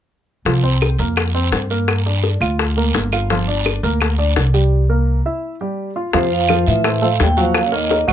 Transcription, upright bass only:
0.45 C2
0.99 F2
1.52 G2
2.41 D2
2.95 G1
3.83 D2
4.36 C2
6.14 F2
6.68 A2
7.20 D#2
8.08 G#1

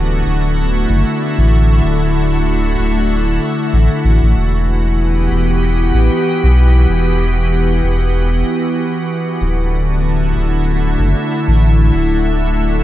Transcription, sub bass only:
Already playing: D1
0.26 D1
0.89 F#1
1.38 A1
1.84 D1
2.78 D1
3.73 A1
4.04 A1
4.22 A1
4.37 E1
5.31 E1
5.94 A1
6.43 B1
6.89 E1
7.83 E1
9.41 D1
10.36 D1
10.99 F#1
11.48 A1
11.94 D1

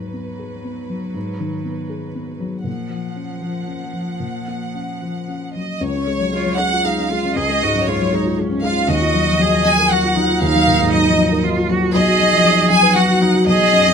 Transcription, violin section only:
Already playing: B4
2.64 F#5
5.55 D#5
5.81 C#5
6.58 F#5
6.83 F5
7.36 D#5
7.87 C#5
8.64 F5
8.90 D#5
9.66 G#5
9.91 F#5
10.42 F5
10.92 D#5
11.94 D#5
12.71 G#5
12.96 F#5
13.48 D#5

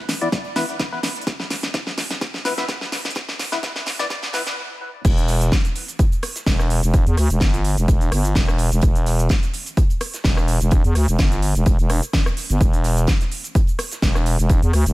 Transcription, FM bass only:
5.05 E1
6.46 E1
6.83 E1
7.07 E2
7.18 D2
7.30 E1
7.41 G1
7.78 E1
7.88 E1
8.12 G1
8.36 E1
8.72 E1
8.83 E1
10.25 E1
10.61 E1
10.85 E2
10.95 D2
11.08 E1
11.19 G1
11.55 E1
11.66 E1
11.79 E1
12.50 G1
12.61 E1
14.02 E1
14.39 E1
14.63 E2
14.73 D2
14.86 E1

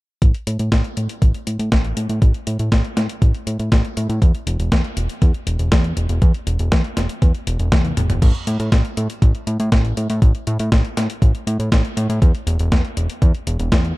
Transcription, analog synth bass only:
0.22 A1
0.47 A2
0.59 A2
0.72 A1
0.97 A2
1.22 A1
1.47 A2
1.59 A2
1.72 A1
1.97 A2
2.09 A2
2.22 A1
2.47 A2
2.59 A2
2.72 A1
2.97 A2
3.22 A1
3.47 A2
3.59 A2
3.72 A1
3.97 A2
4.09 A2
4.22 E2
4.47 E1
4.59 E1
4.72 E2
4.97 E1
5.22 E2
5.47 E1
5.59 E1
5.72 E2
5.97 E1
6.09 E1
6.22 E2
6.47 E1
6.60 E1
6.72 E2
6.97 E1
7.22 E2
7.47 E1
7.60 E1
7.72 E2
7.97 E1
8.10 E1
8.22 A1
8.47 A2
8.60 A2
8.72 A1
8.97 A2
9.22 A1
9.47 A2
9.60 A2
9.72 A1
9.97 A2
10.10 A2
10.22 A1
10.47 A2
10.60 A2
10.72 A1
10.97 A2
11.22 A1
11.47 A2
11.59 A2
11.72 A1
11.97 A2
12.09 A2
12.22 E2
12.47 E1
12.59 E1
12.72 E2
12.97 E1
13.22 E2
13.47 E1
13.60 E1
13.72 E2

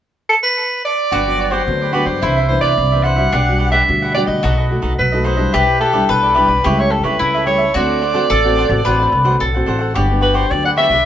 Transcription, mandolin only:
1.12 F#4
2.22 E4
3.32 D4
4.43 F#4
5.54 G4
6.09 B4
6.64 G4
7.19 E4
7.74 F#4
8.30 A4
8.85 B4
9.40 A4
9.95 G4

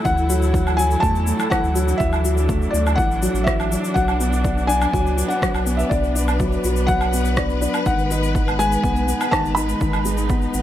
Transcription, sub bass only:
0.06 D2
1.03 E2
1.63 D2
2.00 D2
2.74 D2
2.98 A1
3.34 A1
3.96 B1
4.93 C#2
5.54 B1
5.91 B1
6.64 B1
7.86 G#1
8.84 B1
9.44 G#1
9.81 G#1
10.54 G#1

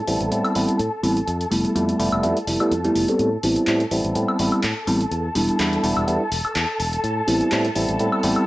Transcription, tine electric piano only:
0.07 G3 B3 C4 E4
0.31 G3 B3 C4 E4
0.55 G3 B3 C4 E4
1.03 G3 B3 C4 E4
1.51 G3 A3 B3 E4
1.75 G3 A3 B3 E4
1.99 G3 A3 B3 E4
2.23 G3 A3 B3 E4
2.47 G3 A3 B3 E4
2.60 G3 A3 B3 E4
2.84 G3 A3 B3 E4
3.08 G3 B3 C4 A4
3.43 G3 B3 C4 E4
3.68 G3 B3 C4 E4
3.91 G3 B3 C4 E4
4.15 G3 B3 C4 E4
4.39 G3 B3 C4 E4
4.87 G3 B3 C4 E4
5.35 G3 B3 D4 E4
5.59 G3 B3 D4 E4
5.83 G3 B3 D4 E4
6.07 G3 B3 D4 E4
7.27 G3 B3 C4 E4
7.51 G3 B3 C4 E4
7.75 G3 B3 C4 E4
7.99 G3 B3 C4 E4
8.23 G3 B3 C4 E4

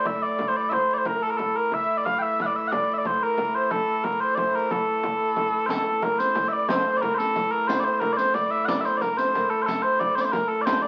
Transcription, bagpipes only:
0.07 E5
0.23 D5
0.48 C5
0.56 D5
0.70 C5 E5
0.94 D5
0.98 C5
1.06 A#4
1.23 A4
1.30 A#4
1.37 A4
1.56 A#4
1.74 E5
1.98 D5
2.05 F5
2.19 E5 G5
2.42 F#5
2.46 D5
2.56 E5
2.68 F#5
2.72 D5
2.94 E5
2.98 D5
3.07 C5
3.23 A#4
3.55 C5
3.71 A4
4.04 A#4
4.20 C5
4.35 C5 D5
4.55 A#4
4.72 A4
5.66 A4 C5
6.03 A#4
6.19 C5
6.48 E5
6.53 D5
6.68 C5
6.97 D5
7.01 A#4
7.14 A4 C5
7.51 A#4
7.68 C5
7.80 D5
7.84 C5
8.00 A#4
8.13 D5
8.17 C5
8.34 D5
8.51 E5
8.65 D5 F#5
8.81 E5
8.85 C5
8.97 D5
9.02 A#4
9.18 C5
9.50 A4
9.62 C5
9.66 A4
9.83 C5
9.99 D5
10.15 C5
10.21 C5 D5
10.32 A#4
10.48 A4
10.62 C5 D5
10.82 D5

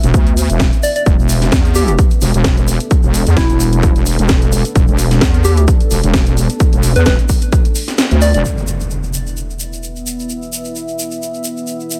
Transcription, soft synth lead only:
0.83 D5
0.96 D5
1.76 G4
1.88 G4
3.37 E4
5.45 G4
5.57 G4
6.96 B4
7.06 B4
8.22 D5
8.34 D5

